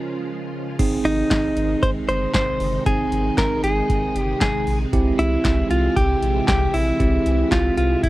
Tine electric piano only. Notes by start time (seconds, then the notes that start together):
Already playing: C#4 F4 A#4
0.79 C4 D#4 G#4
2.86 C4 D#4 G#4
4.93 C4 E4 G4
7.00 C4 E4 G4